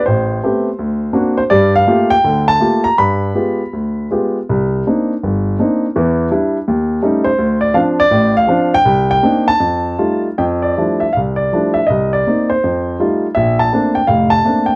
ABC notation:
X:1
M:4/4
L:1/8
Q:"Swing" 1/4=163
K:Gm
V:1 name="Grand piano"
c6 z c | d f2 g2 a2 b | =b6 z2 | z8 |
z6 z c- | c d f d2 f2 g- | g g2 a4 z | [K:F] g d2 e f d2 e |
_e d2 c4 z | e a2 g f a2 g |]
V:2 name="Grand piano"
[A,,,A,,]2 [A,=B,CG] z D,,2 [_B,CD^F] z | [G,,G,]2 [A,B,FG] z [D,,D,]2 [A,B,FG] z | G,,2 [_A,=B,FG] z D,,2 [A,B,FG] z | C,,2 [B,CDE] z G,,,2 [B,CDE] z |
[=E,,=E,]2 [G,D=E] z _E,,2 [G,A,_D_E] z | D,,2 [F,CD] z [A,,,A,,]2 [F,CD] z | C,,2 [B,CDE] z F,,2 [G,A,EF] z | [K:F] F,,2 [F,G,A,DE] z C,,2 [F,G,A,DE] z |
C,,2 [B,C_E] z F,,2 [G,A,EF] z | B,,,2 [A,B,CD] z [F,,,A,,]2 [A,B,CD] z |]